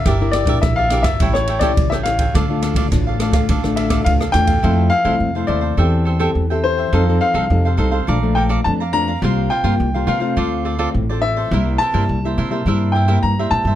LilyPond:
<<
  \new Staff \with { instrumentName = "Grand piano" } { \time 4/4 \key d \minor \tempo 4 = 105 e''8 d''8 e''16 f''8 e''8 cis''8 d''8 e''16 f''8~ | f''2~ f''8 e''8 f''8 g''8~ | \key f \major g''8 f''4 d''4. r8 c''8~ | c''8 f''2 g''8 a''8 bes''8~ |
bes''8 g''4 f''4. r8 e''8~ | e''8 a''2 g''8 bes''8 a''8 | }
  \new Staff \with { instrumentName = "Cavaquinho" } { \time 4/4 \key d \minor <g' bes' d'' e''>8 <g' bes' d'' e''>16 <g' bes' d'' e''>16 r16 <bes' d'' e''>16 <g' bes' d'' e''>16 <bes' d'' e''>16 <e' a' cis'' g''>8 <e' a' cis'' g''>16 <e' a' cis'' g''>16 r16 <a' cis'' g''>8 <a' cis'' g''>16 | <d' a' d'' f''>8 <d' a' d'' f''>16 <d' a' d'' f''>16 r16 <a' d'' f''>16 <d' a' d'' f''>16 <a' d'' f''>16 <d' a' d'' f''>8 <d' a' d'' f''>16 <d' a' d'' f''>16 r16 <a' d'' f''>8 <a' d'' f''>16 | \key f \major <e' a' c'' f''>8 <e' a' c'' f''>16 <e' a' c'' f''>16 r16 <a' c'' f''>16 <e' a' c'' f''>16 <a' c'' f''>16 <a' c'' e'' g''>8 <a' c'' e'' g''>16 <a' c'' e'' g''>16 r16 <c'' e'' g''>8 <c'' e'' g''>16 | <ees' a' c'' f''>8 <ees' a' c'' f''>16 <ees' a' c'' f''>16 r16 <a' c'' f''>16 <ees' a' c'' f''>16 <a' c'' f''>16 <a' d'' f'' bes''>8 <a' d'' f'' bes''>16 <a' d'' f'' bes''>16 r16 <d'' f'' bes''>8 <d'' f'' bes''>16 |
<f' bes' c'' f''>8 <f' bes' c'' f''>16 <f' bes' c'' f''>16 r16 <bes' c'' f''>16 <f' bes' c'' f''>16 <bes' c'' f''>16 <f' a' c'' d''>8 <f' a' c'' d''>16 <f' a' c'' d''>16 r16 <a' c'' d''>8 <a' c'' d''>16 | <e' bes' c'' e''>8 <e' bes' c'' e''>16 <e' bes' c'' e''>16 r16 <bes' c'' e''>16 <e' bes' c'' e''>16 <bes' c'' e''>16 <e' bes' c'' e''>8 <e' bes' c'' e''>16 <e' bes' c'' e''>16 r16 <bes' c'' e''>8 <bes' c'' e''>16 | }
  \new Staff \with { instrumentName = "Nylon-string guitar" } { \time 4/4 \key d \minor << { <d' e' bes'>16 <d' e' bes'>8 <d' e' bes'>8. <d' e' bes'>16 r16 <g cis' e'>8 r16 <g cis' e'>8. <g cis' e'>16 r16 | <a d' f'>16 <a d' f'>8. <a d' f'>8 <a d' f'>8. <a d' f'>8. <a d' f'>16 r16 <a d' f'>16 r16 | \key f \major <a c' e'>8 r16 <a c' e'>8 <a c' e'>8. <c' g' a'>8. <c' g' a'>8 <c' g' a'>8. | <c' ees' a'>16 <c' ees' a'>8. <c' ees' a'>16 r16 <c' ees' a'>16 r16 <f a d'>16 <f a d'>8. <f a d'>16 r16 <f a d'>16 r16 |
<g bes f'>8 r16 <g bes f'>8 <g bes f'>8 <a c' f'>4 <a c' f'>8 <a c' f'>8. | <g bes e'>8 r16 <g bes e'>8 <g bes e'>8 <g bes e'>16 <g bes e'>8. <g bes e'>8 <g bes e'>8. | } \\ { g4 g4 a,4 e4 | d4 a,4 d4 a,4 | f4 c4 e4 e4 | f4 c4 bes,4 f,4 |
c4 g,4 d4 a,4 | c4 g,4 c4 g,4 | } >> }
  \new Staff \with { instrumentName = "Upright bass" } { \clef bass \time 4/4 \key d \minor g,,8. bes,,16 bes,,8. g,,16 a,,4 a,,4 | d,8. a,,16 a,,8. d,16 a,,4 d,8 e,8 | \key f \major f,8 r16 c,16 f,8 ees,8 e,4 e,4 | f,8 r16 c,16 f,8 c,8 bes,,4 f,4 |
c,8 r16 g,16 c,8 c8 d,4 a,,4 | c,8 r16 g,16 c,8 c8 g,4 g,8 a,16 g,16 | }
  \new DrumStaff \with { instrumentName = "Drums" } \drummode { \time 4/4 <bd cymr ss>8 <cymr ss>16 <bd cymr>16 <bd cymr ss>8 <cymr ss>16 <bd cymr ss>16 <bd cymr>16 ss16 cymr16 <bd cymr ss>16 <bd cymr>16 ss16 <cymr ss>16 <bd cymr>16 | <bd cymr ss>8 <cymr ss>16 <bd cymr>16 <bd cymr ss>8 <cymr ss>16 <bd cymr ss>16 <bd cymr>16 ss16 cymr16 <bd cymr ss>16 <bd cymr>16 ss16 <cymr ss>16 <bd cymr>16 | r4 r4 r4 r4 | r4 r4 r4 r4 |
r4 r4 r4 r4 | r4 r4 r4 r4 | }
>>